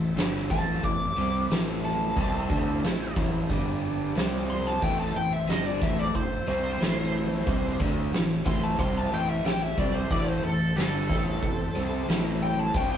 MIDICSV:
0, 0, Header, 1, 6, 480
1, 0, Start_track
1, 0, Key_signature, 0, "minor"
1, 0, Tempo, 661521
1, 1580, Time_signature, 4, 2, 24, 8
1, 9414, End_track
2, 0, Start_track
2, 0, Title_t, "Lead electric guitar"
2, 0, Program_c, 0, 29
2, 369, Note_on_c, 0, 81, 105
2, 605, Note_off_c, 0, 81, 0
2, 611, Note_on_c, 0, 86, 88
2, 1315, Note_off_c, 0, 86, 0
2, 1340, Note_on_c, 0, 81, 91
2, 2275, Note_off_c, 0, 81, 0
2, 3264, Note_on_c, 0, 84, 86
2, 3381, Note_off_c, 0, 84, 0
2, 3385, Note_on_c, 0, 81, 81
2, 3502, Note_off_c, 0, 81, 0
2, 3502, Note_on_c, 0, 79, 98
2, 3620, Note_off_c, 0, 79, 0
2, 3623, Note_on_c, 0, 81, 102
2, 3745, Note_off_c, 0, 81, 0
2, 3745, Note_on_c, 0, 79, 86
2, 3862, Note_off_c, 0, 79, 0
2, 3866, Note_on_c, 0, 76, 87
2, 3981, Note_off_c, 0, 76, 0
2, 3981, Note_on_c, 0, 75, 95
2, 4106, Note_off_c, 0, 75, 0
2, 4106, Note_on_c, 0, 74, 82
2, 4229, Note_off_c, 0, 74, 0
2, 4229, Note_on_c, 0, 76, 91
2, 4343, Note_off_c, 0, 76, 0
2, 4349, Note_on_c, 0, 74, 83
2, 4462, Note_off_c, 0, 74, 0
2, 4462, Note_on_c, 0, 72, 90
2, 4693, Note_off_c, 0, 72, 0
2, 4702, Note_on_c, 0, 72, 94
2, 5632, Note_off_c, 0, 72, 0
2, 6146, Note_on_c, 0, 84, 96
2, 6264, Note_off_c, 0, 84, 0
2, 6264, Note_on_c, 0, 81, 84
2, 6381, Note_off_c, 0, 81, 0
2, 6381, Note_on_c, 0, 84, 93
2, 6511, Note_off_c, 0, 84, 0
2, 6511, Note_on_c, 0, 81, 85
2, 6621, Note_off_c, 0, 81, 0
2, 6631, Note_on_c, 0, 79, 91
2, 6739, Note_off_c, 0, 79, 0
2, 6739, Note_on_c, 0, 76, 95
2, 6855, Note_off_c, 0, 76, 0
2, 6860, Note_on_c, 0, 79, 85
2, 6983, Note_off_c, 0, 79, 0
2, 6983, Note_on_c, 0, 76, 93
2, 7096, Note_off_c, 0, 76, 0
2, 7101, Note_on_c, 0, 74, 88
2, 7214, Note_off_c, 0, 74, 0
2, 7214, Note_on_c, 0, 72, 83
2, 7336, Note_off_c, 0, 72, 0
2, 7336, Note_on_c, 0, 74, 101
2, 7452, Note_off_c, 0, 74, 0
2, 7460, Note_on_c, 0, 72, 91
2, 7572, Note_off_c, 0, 72, 0
2, 7575, Note_on_c, 0, 69, 104
2, 7807, Note_off_c, 0, 69, 0
2, 7817, Note_on_c, 0, 69, 100
2, 8743, Note_off_c, 0, 69, 0
2, 9016, Note_on_c, 0, 79, 97
2, 9136, Note_off_c, 0, 79, 0
2, 9136, Note_on_c, 0, 81, 92
2, 9254, Note_off_c, 0, 81, 0
2, 9254, Note_on_c, 0, 79, 97
2, 9365, Note_off_c, 0, 79, 0
2, 9374, Note_on_c, 0, 79, 97
2, 9414, Note_off_c, 0, 79, 0
2, 9414, End_track
3, 0, Start_track
3, 0, Title_t, "Tonewheel organ"
3, 0, Program_c, 1, 16
3, 0, Note_on_c, 1, 69, 70
3, 0, Note_on_c, 1, 72, 71
3, 0, Note_on_c, 1, 76, 72
3, 1561, Note_off_c, 1, 69, 0
3, 1562, Note_off_c, 1, 72, 0
3, 1563, Note_off_c, 1, 76, 0
3, 1576, Note_on_c, 1, 69, 68
3, 1576, Note_on_c, 1, 72, 72
3, 1577, Note_on_c, 1, 64, 67
3, 2532, Note_off_c, 1, 64, 0
3, 2532, Note_off_c, 1, 69, 0
3, 2536, Note_off_c, 1, 72, 0
3, 2545, Note_on_c, 1, 62, 70
3, 2546, Note_on_c, 1, 74, 68
3, 2549, Note_on_c, 1, 67, 72
3, 2550, Note_on_c, 1, 55, 68
3, 3019, Note_off_c, 1, 55, 0
3, 3020, Note_off_c, 1, 62, 0
3, 3021, Note_off_c, 1, 74, 0
3, 3022, Note_off_c, 1, 67, 0
3, 3027, Note_on_c, 1, 55, 66
3, 3028, Note_on_c, 1, 60, 68
3, 3030, Note_on_c, 1, 72, 65
3, 3031, Note_on_c, 1, 67, 66
3, 3498, Note_off_c, 1, 72, 0
3, 3501, Note_off_c, 1, 60, 0
3, 3502, Note_off_c, 1, 55, 0
3, 3504, Note_off_c, 1, 67, 0
3, 3506, Note_on_c, 1, 72, 68
3, 3509, Note_on_c, 1, 60, 71
3, 3509, Note_on_c, 1, 64, 71
3, 3514, Note_on_c, 1, 69, 74
3, 5404, Note_off_c, 1, 72, 0
3, 5405, Note_off_c, 1, 64, 0
3, 5406, Note_off_c, 1, 60, 0
3, 5408, Note_off_c, 1, 69, 0
3, 5428, Note_on_c, 1, 69, 70
3, 5428, Note_on_c, 1, 72, 69
3, 5429, Note_on_c, 1, 60, 71
3, 5431, Note_on_c, 1, 64, 70
3, 7319, Note_off_c, 1, 69, 0
3, 7320, Note_off_c, 1, 60, 0
3, 7320, Note_off_c, 1, 72, 0
3, 7321, Note_off_c, 1, 64, 0
3, 7330, Note_on_c, 1, 69, 74
3, 7335, Note_on_c, 1, 64, 73
3, 7336, Note_on_c, 1, 60, 70
3, 7336, Note_on_c, 1, 72, 74
3, 9227, Note_off_c, 1, 69, 0
3, 9229, Note_off_c, 1, 64, 0
3, 9230, Note_off_c, 1, 60, 0
3, 9230, Note_off_c, 1, 72, 0
3, 9259, Note_on_c, 1, 61, 65
3, 9262, Note_on_c, 1, 70, 68
3, 9265, Note_on_c, 1, 65, 66
3, 9266, Note_on_c, 1, 73, 66
3, 9414, Note_off_c, 1, 61, 0
3, 9414, Note_off_c, 1, 65, 0
3, 9414, Note_off_c, 1, 70, 0
3, 9414, Note_off_c, 1, 73, 0
3, 9414, End_track
4, 0, Start_track
4, 0, Title_t, "Overdriven electric guitar"
4, 0, Program_c, 2, 29
4, 0, Note_on_c, 2, 45, 66
4, 0, Note_on_c, 2, 52, 68
4, 81, Note_off_c, 2, 45, 0
4, 82, Note_off_c, 2, 52, 0
4, 121, Note_on_c, 2, 43, 96
4, 125, Note_on_c, 2, 50, 90
4, 126, Note_on_c, 2, 55, 109
4, 360, Note_off_c, 2, 43, 0
4, 360, Note_off_c, 2, 50, 0
4, 363, Note_off_c, 2, 55, 0
4, 363, Note_on_c, 2, 45, 88
4, 369, Note_on_c, 2, 52, 97
4, 371, Note_on_c, 2, 57, 110
4, 596, Note_off_c, 2, 45, 0
4, 601, Note_off_c, 2, 52, 0
4, 605, Note_on_c, 2, 45, 62
4, 606, Note_off_c, 2, 57, 0
4, 610, Note_on_c, 2, 52, 71
4, 803, Note_off_c, 2, 45, 0
4, 805, Note_off_c, 2, 52, 0
4, 848, Note_on_c, 2, 48, 86
4, 851, Note_on_c, 2, 55, 94
4, 854, Note_on_c, 2, 60, 90
4, 1086, Note_off_c, 2, 48, 0
4, 1087, Note_off_c, 2, 55, 0
4, 1089, Note_off_c, 2, 60, 0
4, 1092, Note_on_c, 2, 45, 92
4, 1094, Note_on_c, 2, 52, 96
4, 1095, Note_on_c, 2, 57, 90
4, 1568, Note_off_c, 2, 45, 0
4, 1570, Note_on_c, 2, 48, 93
4, 1571, Note_off_c, 2, 52, 0
4, 1572, Note_off_c, 2, 57, 0
4, 1575, Note_on_c, 2, 55, 104
4, 1578, Note_on_c, 2, 60, 104
4, 1806, Note_off_c, 2, 48, 0
4, 1809, Note_off_c, 2, 55, 0
4, 1809, Note_on_c, 2, 50, 89
4, 1811, Note_off_c, 2, 60, 0
4, 1812, Note_on_c, 2, 57, 84
4, 1814, Note_on_c, 2, 62, 94
4, 2049, Note_off_c, 2, 50, 0
4, 2050, Note_off_c, 2, 57, 0
4, 2051, Note_off_c, 2, 62, 0
4, 2053, Note_on_c, 2, 45, 67
4, 2053, Note_on_c, 2, 52, 72
4, 2250, Note_off_c, 2, 45, 0
4, 2250, Note_off_c, 2, 52, 0
4, 2297, Note_on_c, 2, 45, 98
4, 2299, Note_on_c, 2, 52, 97
4, 2303, Note_on_c, 2, 57, 92
4, 2531, Note_off_c, 2, 45, 0
4, 2531, Note_on_c, 2, 43, 81
4, 2534, Note_off_c, 2, 52, 0
4, 2534, Note_on_c, 2, 50, 96
4, 2536, Note_off_c, 2, 57, 0
4, 2537, Note_on_c, 2, 55, 100
4, 3007, Note_off_c, 2, 55, 0
4, 3010, Note_off_c, 2, 50, 0
4, 3011, Note_off_c, 2, 43, 0
4, 3013, Note_on_c, 2, 48, 86
4, 3016, Note_on_c, 2, 55, 96
4, 3018, Note_on_c, 2, 60, 103
4, 3491, Note_off_c, 2, 48, 0
4, 3493, Note_off_c, 2, 55, 0
4, 3494, Note_on_c, 2, 45, 101
4, 3495, Note_off_c, 2, 60, 0
4, 3497, Note_on_c, 2, 52, 97
4, 3499, Note_on_c, 2, 57, 98
4, 3727, Note_off_c, 2, 45, 0
4, 3728, Note_off_c, 2, 52, 0
4, 3735, Note_off_c, 2, 57, 0
4, 3735, Note_on_c, 2, 45, 60
4, 3737, Note_on_c, 2, 52, 66
4, 3932, Note_off_c, 2, 45, 0
4, 3933, Note_off_c, 2, 52, 0
4, 3974, Note_on_c, 2, 43, 93
4, 3976, Note_on_c, 2, 50, 109
4, 3978, Note_on_c, 2, 55, 113
4, 4211, Note_off_c, 2, 50, 0
4, 4212, Note_off_c, 2, 43, 0
4, 4214, Note_off_c, 2, 55, 0
4, 4214, Note_on_c, 2, 45, 97
4, 4217, Note_on_c, 2, 52, 98
4, 4221, Note_on_c, 2, 57, 98
4, 4448, Note_off_c, 2, 45, 0
4, 4453, Note_off_c, 2, 52, 0
4, 4455, Note_off_c, 2, 57, 0
4, 4457, Note_on_c, 2, 45, 64
4, 4462, Note_on_c, 2, 52, 75
4, 4653, Note_off_c, 2, 45, 0
4, 4655, Note_off_c, 2, 52, 0
4, 4696, Note_on_c, 2, 48, 89
4, 4700, Note_on_c, 2, 55, 83
4, 4702, Note_on_c, 2, 60, 98
4, 4931, Note_off_c, 2, 48, 0
4, 4934, Note_on_c, 2, 45, 92
4, 4935, Note_off_c, 2, 55, 0
4, 4936, Note_off_c, 2, 60, 0
4, 4938, Note_on_c, 2, 52, 91
4, 4939, Note_on_c, 2, 57, 100
4, 5410, Note_off_c, 2, 45, 0
4, 5412, Note_off_c, 2, 52, 0
4, 5413, Note_off_c, 2, 57, 0
4, 5416, Note_on_c, 2, 48, 97
4, 5419, Note_on_c, 2, 55, 108
4, 5422, Note_on_c, 2, 60, 107
4, 5651, Note_off_c, 2, 48, 0
4, 5653, Note_off_c, 2, 55, 0
4, 5654, Note_off_c, 2, 60, 0
4, 5659, Note_on_c, 2, 50, 88
4, 5663, Note_on_c, 2, 57, 89
4, 5665, Note_on_c, 2, 62, 100
4, 5893, Note_off_c, 2, 50, 0
4, 5895, Note_off_c, 2, 57, 0
4, 5896, Note_off_c, 2, 62, 0
4, 5899, Note_on_c, 2, 45, 63
4, 5902, Note_on_c, 2, 52, 80
4, 6092, Note_off_c, 2, 45, 0
4, 6093, Note_off_c, 2, 52, 0
4, 6132, Note_on_c, 2, 45, 86
4, 6135, Note_on_c, 2, 52, 98
4, 6139, Note_on_c, 2, 57, 102
4, 6368, Note_off_c, 2, 45, 0
4, 6370, Note_off_c, 2, 52, 0
4, 6371, Note_off_c, 2, 57, 0
4, 6373, Note_on_c, 2, 48, 95
4, 6377, Note_on_c, 2, 55, 92
4, 6378, Note_on_c, 2, 60, 105
4, 6608, Note_off_c, 2, 48, 0
4, 6610, Note_off_c, 2, 55, 0
4, 6610, Note_off_c, 2, 60, 0
4, 6614, Note_on_c, 2, 45, 80
4, 6615, Note_on_c, 2, 52, 85
4, 6618, Note_on_c, 2, 57, 94
4, 6844, Note_off_c, 2, 45, 0
4, 6849, Note_off_c, 2, 52, 0
4, 6850, Note_off_c, 2, 57, 0
4, 6853, Note_on_c, 2, 45, 69
4, 6857, Note_on_c, 2, 52, 70
4, 7046, Note_off_c, 2, 45, 0
4, 7048, Note_off_c, 2, 52, 0
4, 7097, Note_on_c, 2, 48, 92
4, 7099, Note_on_c, 2, 55, 88
4, 7102, Note_on_c, 2, 60, 97
4, 7329, Note_off_c, 2, 48, 0
4, 7330, Note_off_c, 2, 55, 0
4, 7331, Note_off_c, 2, 60, 0
4, 7334, Note_on_c, 2, 45, 100
4, 7336, Note_on_c, 2, 52, 97
4, 7339, Note_on_c, 2, 57, 106
4, 7567, Note_off_c, 2, 45, 0
4, 7568, Note_off_c, 2, 52, 0
4, 7569, Note_off_c, 2, 57, 0
4, 7577, Note_on_c, 2, 45, 60
4, 7582, Note_on_c, 2, 52, 75
4, 7767, Note_off_c, 2, 45, 0
4, 7770, Note_off_c, 2, 52, 0
4, 7815, Note_on_c, 2, 43, 100
4, 7818, Note_on_c, 2, 50, 107
4, 7820, Note_on_c, 2, 55, 105
4, 8046, Note_off_c, 2, 43, 0
4, 8048, Note_off_c, 2, 50, 0
4, 8049, Note_off_c, 2, 55, 0
4, 8055, Note_on_c, 2, 45, 89
4, 8057, Note_on_c, 2, 52, 98
4, 8059, Note_on_c, 2, 57, 105
4, 8286, Note_off_c, 2, 45, 0
4, 8287, Note_off_c, 2, 52, 0
4, 8288, Note_off_c, 2, 57, 0
4, 8295, Note_on_c, 2, 45, 60
4, 8299, Note_on_c, 2, 52, 73
4, 8485, Note_off_c, 2, 45, 0
4, 8487, Note_off_c, 2, 52, 0
4, 8528, Note_on_c, 2, 48, 92
4, 8532, Note_on_c, 2, 55, 93
4, 8534, Note_on_c, 2, 60, 94
4, 8761, Note_off_c, 2, 48, 0
4, 8764, Note_off_c, 2, 55, 0
4, 8765, Note_off_c, 2, 60, 0
4, 8770, Note_on_c, 2, 45, 98
4, 8774, Note_on_c, 2, 52, 107
4, 8776, Note_on_c, 2, 57, 101
4, 9241, Note_off_c, 2, 45, 0
4, 9244, Note_off_c, 2, 52, 0
4, 9245, Note_off_c, 2, 57, 0
4, 9248, Note_on_c, 2, 48, 98
4, 9251, Note_on_c, 2, 55, 108
4, 9253, Note_on_c, 2, 60, 106
4, 9414, Note_off_c, 2, 48, 0
4, 9414, Note_off_c, 2, 55, 0
4, 9414, Note_off_c, 2, 60, 0
4, 9414, End_track
5, 0, Start_track
5, 0, Title_t, "Fingered electric bass"
5, 0, Program_c, 3, 33
5, 0, Note_on_c, 3, 33, 76
5, 110, Note_off_c, 3, 33, 0
5, 120, Note_on_c, 3, 31, 94
5, 349, Note_off_c, 3, 31, 0
5, 365, Note_on_c, 3, 33, 92
5, 593, Note_off_c, 3, 33, 0
5, 606, Note_on_c, 3, 33, 72
5, 834, Note_off_c, 3, 33, 0
5, 849, Note_on_c, 3, 36, 84
5, 1077, Note_off_c, 3, 36, 0
5, 1089, Note_on_c, 3, 33, 93
5, 1547, Note_off_c, 3, 33, 0
5, 1571, Note_on_c, 3, 36, 94
5, 1799, Note_off_c, 3, 36, 0
5, 1816, Note_on_c, 3, 38, 93
5, 2042, Note_off_c, 3, 38, 0
5, 2061, Note_on_c, 3, 33, 84
5, 2285, Note_off_c, 3, 33, 0
5, 2296, Note_on_c, 3, 33, 98
5, 2523, Note_off_c, 3, 33, 0
5, 2538, Note_on_c, 3, 31, 91
5, 2993, Note_off_c, 3, 31, 0
5, 3018, Note_on_c, 3, 36, 92
5, 3473, Note_off_c, 3, 36, 0
5, 3500, Note_on_c, 3, 33, 96
5, 3726, Note_off_c, 3, 33, 0
5, 3744, Note_on_c, 3, 33, 81
5, 3968, Note_off_c, 3, 33, 0
5, 3983, Note_on_c, 3, 31, 91
5, 4207, Note_off_c, 3, 31, 0
5, 4221, Note_on_c, 3, 33, 97
5, 4446, Note_off_c, 3, 33, 0
5, 4460, Note_on_c, 3, 33, 76
5, 4685, Note_off_c, 3, 33, 0
5, 4700, Note_on_c, 3, 36, 88
5, 4925, Note_off_c, 3, 36, 0
5, 4939, Note_on_c, 3, 33, 94
5, 5391, Note_off_c, 3, 33, 0
5, 5420, Note_on_c, 3, 36, 101
5, 5644, Note_off_c, 3, 36, 0
5, 5660, Note_on_c, 3, 38, 97
5, 5883, Note_off_c, 3, 38, 0
5, 5898, Note_on_c, 3, 33, 84
5, 6122, Note_off_c, 3, 33, 0
5, 6139, Note_on_c, 3, 33, 96
5, 6362, Note_off_c, 3, 33, 0
5, 6375, Note_on_c, 3, 36, 95
5, 6599, Note_off_c, 3, 36, 0
5, 6618, Note_on_c, 3, 33, 98
5, 6841, Note_off_c, 3, 33, 0
5, 6854, Note_on_c, 3, 33, 78
5, 7078, Note_off_c, 3, 33, 0
5, 7093, Note_on_c, 3, 36, 94
5, 7317, Note_off_c, 3, 36, 0
5, 7332, Note_on_c, 3, 33, 102
5, 7556, Note_off_c, 3, 33, 0
5, 7574, Note_on_c, 3, 33, 84
5, 7797, Note_off_c, 3, 33, 0
5, 7809, Note_on_c, 3, 31, 98
5, 8034, Note_off_c, 3, 31, 0
5, 8052, Note_on_c, 3, 33, 94
5, 8275, Note_off_c, 3, 33, 0
5, 8289, Note_on_c, 3, 33, 76
5, 8513, Note_off_c, 3, 33, 0
5, 8531, Note_on_c, 3, 36, 94
5, 8754, Note_off_c, 3, 36, 0
5, 8768, Note_on_c, 3, 33, 98
5, 9219, Note_off_c, 3, 33, 0
5, 9247, Note_on_c, 3, 36, 96
5, 9414, Note_off_c, 3, 36, 0
5, 9414, End_track
6, 0, Start_track
6, 0, Title_t, "Drums"
6, 124, Note_on_c, 9, 46, 63
6, 135, Note_on_c, 9, 38, 113
6, 196, Note_off_c, 9, 46, 0
6, 208, Note_off_c, 9, 38, 0
6, 364, Note_on_c, 9, 36, 97
6, 437, Note_off_c, 9, 36, 0
6, 606, Note_on_c, 9, 36, 86
6, 607, Note_on_c, 9, 46, 56
6, 679, Note_off_c, 9, 36, 0
6, 679, Note_off_c, 9, 46, 0
6, 1089, Note_on_c, 9, 46, 63
6, 1101, Note_on_c, 9, 38, 111
6, 1161, Note_off_c, 9, 46, 0
6, 1173, Note_off_c, 9, 38, 0
6, 1572, Note_on_c, 9, 36, 111
6, 1572, Note_on_c, 9, 46, 57
6, 1644, Note_off_c, 9, 46, 0
6, 1645, Note_off_c, 9, 36, 0
6, 1813, Note_on_c, 9, 36, 112
6, 1886, Note_off_c, 9, 36, 0
6, 2054, Note_on_c, 9, 46, 56
6, 2065, Note_on_c, 9, 38, 109
6, 2126, Note_off_c, 9, 46, 0
6, 2138, Note_off_c, 9, 38, 0
6, 2296, Note_on_c, 9, 36, 104
6, 2368, Note_off_c, 9, 36, 0
6, 2536, Note_on_c, 9, 36, 95
6, 2536, Note_on_c, 9, 46, 54
6, 2609, Note_off_c, 9, 36, 0
6, 2609, Note_off_c, 9, 46, 0
6, 3019, Note_on_c, 9, 46, 60
6, 3030, Note_on_c, 9, 38, 113
6, 3091, Note_off_c, 9, 46, 0
6, 3103, Note_off_c, 9, 38, 0
6, 3499, Note_on_c, 9, 46, 62
6, 3500, Note_on_c, 9, 36, 102
6, 3571, Note_off_c, 9, 46, 0
6, 3572, Note_off_c, 9, 36, 0
6, 3980, Note_on_c, 9, 46, 60
6, 3992, Note_on_c, 9, 38, 109
6, 4053, Note_off_c, 9, 46, 0
6, 4064, Note_off_c, 9, 38, 0
6, 4221, Note_on_c, 9, 36, 104
6, 4294, Note_off_c, 9, 36, 0
6, 4462, Note_on_c, 9, 36, 85
6, 4462, Note_on_c, 9, 46, 57
6, 4534, Note_off_c, 9, 36, 0
6, 4535, Note_off_c, 9, 46, 0
6, 4941, Note_on_c, 9, 46, 63
6, 4953, Note_on_c, 9, 38, 114
6, 5013, Note_off_c, 9, 46, 0
6, 5025, Note_off_c, 9, 38, 0
6, 5421, Note_on_c, 9, 36, 110
6, 5423, Note_on_c, 9, 46, 61
6, 5493, Note_off_c, 9, 36, 0
6, 5496, Note_off_c, 9, 46, 0
6, 5660, Note_on_c, 9, 36, 108
6, 5732, Note_off_c, 9, 36, 0
6, 5899, Note_on_c, 9, 46, 57
6, 5910, Note_on_c, 9, 38, 114
6, 5971, Note_off_c, 9, 46, 0
6, 5983, Note_off_c, 9, 38, 0
6, 6138, Note_on_c, 9, 36, 106
6, 6211, Note_off_c, 9, 36, 0
6, 6377, Note_on_c, 9, 36, 99
6, 6378, Note_on_c, 9, 46, 52
6, 6450, Note_off_c, 9, 36, 0
6, 6450, Note_off_c, 9, 46, 0
6, 6854, Note_on_c, 9, 46, 57
6, 6866, Note_on_c, 9, 38, 114
6, 6927, Note_off_c, 9, 46, 0
6, 6938, Note_off_c, 9, 38, 0
6, 7094, Note_on_c, 9, 36, 94
6, 7166, Note_off_c, 9, 36, 0
6, 7333, Note_on_c, 9, 36, 110
6, 7336, Note_on_c, 9, 46, 60
6, 7406, Note_off_c, 9, 36, 0
6, 7408, Note_off_c, 9, 46, 0
6, 7813, Note_on_c, 9, 46, 55
6, 7824, Note_on_c, 9, 38, 108
6, 7885, Note_off_c, 9, 46, 0
6, 7897, Note_off_c, 9, 38, 0
6, 8052, Note_on_c, 9, 36, 109
6, 8124, Note_off_c, 9, 36, 0
6, 8291, Note_on_c, 9, 36, 87
6, 8292, Note_on_c, 9, 46, 54
6, 8363, Note_off_c, 9, 36, 0
6, 8365, Note_off_c, 9, 46, 0
6, 8767, Note_on_c, 9, 46, 64
6, 8778, Note_on_c, 9, 38, 113
6, 8839, Note_off_c, 9, 46, 0
6, 8851, Note_off_c, 9, 38, 0
6, 9247, Note_on_c, 9, 36, 113
6, 9247, Note_on_c, 9, 46, 63
6, 9319, Note_off_c, 9, 36, 0
6, 9319, Note_off_c, 9, 46, 0
6, 9414, End_track
0, 0, End_of_file